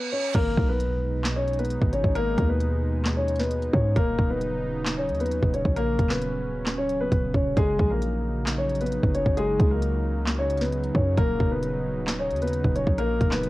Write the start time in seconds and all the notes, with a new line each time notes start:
Already playing: B3 B4, reverse cymbal
0.12 C#4 C#5
0.35 G#1 B2 G#3 A#3 D#4 A#4, kick, closed hi-hat, crash, impact
0.58 B1, kick
0.69 B3 B4
0.80 closed hi-hat
1.25 snare, clap, closed hi-hat
1.36 C#4 C#5
1.48 closed hi-hat
1.53 closed hi-hat
1.59 B3 B4, closed hi-hat
1.65 closed hi-hat
1.70 closed hi-hat
1.82 G#1, kick
1.93 C#4 C#5, closed hi-hat
2.04 G#1, kick
2.15 A#3 A#4, closed hi-hat
2.38 D#2, kick, closed hi-hat
2.49 B3 B4
2.61 closed hi-hat
3.05 snare, clap, closed hi-hat
3.17 C#4 C#5
3.28 closed hi-hat
3.36 B4, snare, closed hi-hat
3.40 B3, closed hi-hat
3.51 closed hi-hat
3.62 closed hi-hat
3.73 G#2 C#4 C#5, kick
3.96 D#1 C#3 F#3 A#3 D#4 A#4, kick, closed hi-hat
4.18 D#1, kick
4.30 B3 B4
4.41 closed hi-hat
4.86 snare, clap, closed hi-hat
4.97 C#4 C#5
5.09 D#2, closed hi-hat
5.14 closed hi-hat
5.20 B3 B4, closed hi-hat
5.26 closed hi-hat
5.31 closed hi-hat
5.42 D#1, kick
5.54 C#4 C#5, closed hi-hat
5.65 A#1, kick
5.76 A#3 C#4 A#4, closed hi-hat
5.99 D#1, kick, closed hi-hat
6.10 B3 B4, snare, clap
6.21 closed hi-hat
6.66 snare, clap, closed hi-hat
6.78 C#4 C#5
6.89 closed hi-hat
7.00 B3 B4
7.12 D#1, kick, closed hi-hat
7.34 D#1 C#4 C#5, kick
7.57 F#1 G#3 D#4 G#4, kick, closed hi-hat
7.79 A#1, kick
7.91 A#3 A#4
8.02 closed hi-hat
8.47 snare, clap, closed hi-hat
8.58 C#4 C#5
8.70 closed hi-hat
8.75 closed hi-hat
8.81 B3 B4, closed hi-hat
8.86 closed hi-hat
8.92 closed hi-hat
9.03 F#1, kick
9.15 C#4 C#5, closed hi-hat
9.26 F#1, kick
9.37 G#3 G#4, closed hi-hat
9.60 C#2, kick, closed hi-hat
9.71 A#3 A#4
9.82 closed hi-hat
10.27 snare, clap, closed hi-hat
10.39 C#4 C#5
10.50 closed hi-hat
10.58 B4, snare, closed hi-hat
10.62 B3, closed hi-hat
10.73 closed hi-hat
10.84 closed hi-hat
10.95 F#2 C#4 C#5, kick
11.18 D#1 A#3 D#4 A#4, kick, closed hi-hat
11.40 D#1, kick
11.52 B3 B4
11.63 closed hi-hat
12.07 snare, clap, closed hi-hat
12.19 C#4 C#5
12.30 D#2, closed hi-hat
12.36 closed hi-hat
12.42 B3 B4, closed hi-hat
12.47 closed hi-hat
12.53 closed hi-hat
12.64 D#1, kick
12.76 C#4 C#5, closed hi-hat
12.87 A#1, kick
12.98 G#3 A#3 A#4, closed hi-hat
13.21 D#1, kick, closed hi-hat
13.31 B3 B4, snare, clap
13.43 closed hi-hat